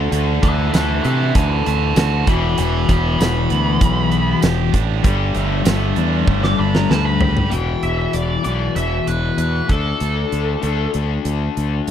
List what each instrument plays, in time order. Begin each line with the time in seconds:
Already playing: distorted electric guitar D3, overdriven electric guitar D3 A3 D4
0.11 fingered electric bass D2, distorted electric guitar D3, closed hi-hat
0.42 fingered electric bass D2, distorted electric guitar E3, lead electric guitar B4 E5, kick, closed hi-hat
0.73 fingered electric bass D2, distorted electric guitar E3, lead electric guitar B4 E5, snare, closed hi-hat, tambourine
1.04 fingered electric bass C3, distorted electric guitar A3, lead electric guitar B4 E5, closed hi-hat
1.35 fingered electric bass D2, distorted electric guitar E3, lead electric guitar F#5 A5, kick, closed hi-hat
1.66 fingered electric bass D2, distorted electric guitar A3, lead electric guitar F#5 A5, closed hi-hat
1.96 fingered electric bass D2, distorted electric guitar F#4, lead electric guitar F#5 A5, snare, closed hi-hat, tambourine
2.26 fingered electric bass E1, overdriven electric guitar E2 B2 E3, distorted electric guitar E3, lead electric guitar G5 B5, kick, closed hi-hat
2.58 fingered electric bass E1, distorted electric guitar E3, lead electric guitar G5 B5, closed hi-hat
2.89 fingered electric bass E1, distorted electric guitar B3, lead electric guitar G5 B5, kick, closed hi-hat
3.19 fingered electric bass E1, distorted electric guitar E3, lead electric guitar B5, snare, closed hi-hat, tambourine
3.50 fingered electric bass D2, distorted electric guitar B3, closed hi-hat
3.80 fingered electric bass B1, distorted electric guitar E3, kick, closed hi-hat
4.11 distorted electric guitar B3, closed hi-hat
4.41 fingered electric bass E1, distorted electric guitar G4, snare, closed hi-hat, tambourine
4.72 fingered electric bass A1, distorted electric guitar D4, kick, closed hi-hat
5.03 fingered electric bass G1, overdriven electric guitar G2 D3 G3, distorted electric guitar G3, kick, closed hi-hat
5.34 fingered electric bass G1, distorted electric guitar A3, closed hi-hat
5.65 fingered electric bass G1, distorted electric guitar A3, snare, closed hi-hat, tambourine
5.96 fingered electric bass E2, distorted electric guitar D4, closed hi-hat
6.27 fingered electric bass G1, distorted electric guitar A3, kick
6.44 lead electric guitar D6, snare
6.58 fingered electric bass G1, distorted electric guitar D4, lead electric guitar B5
6.75 lead electric guitar A#5, snare
6.89 fingered electric bass D2, distorted electric guitar B4, lead electric guitar A5, snare
7.05 lead electric guitar B5
7.21 distorted electric guitar G4, lead electric guitar B5, floor tom
7.37 floor tom
7.50 fingered electric bass E1, overdriven electric guitar E2 B2, lead electric guitar G5, closed hi-hat
7.54 overdriven electric guitar E3
7.83 fingered electric bass E1, lead electric guitar E5, closed hi-hat
7.99 lead electric guitar E5
8.13 fingered electric bass E1, lead electric guitar D5, closed hi-hat
8.43 fingered electric bass B1, overdriven electric guitar E2 B2 E3, lead electric guitar D5, closed hi-hat
8.76 fingered electric bass E1, lead electric guitar E5, closed hi-hat
9.07 fingered electric bass E1, lead electric guitar B4, closed hi-hat
9.38 fingered electric bass E2, lead electric guitar B4, closed hi-hat
9.68 fingered electric bass D2, overdriven electric guitar D3 A3 D4, lead electric guitar A4, kick, closed hi-hat
10.00 fingered electric bass D2, closed hi-hat
10.32 fingered electric bass D2, closed hi-hat
10.62 fingered electric bass D2, overdriven electric guitar D3 A3 D4, closed hi-hat
10.94 fingered electric bass D2, closed hi-hat
11.25 fingered electric bass D2, closed hi-hat
11.57 fingered electric bass D2, closed hi-hat
11.88 fingered electric bass G2, closed hi-hat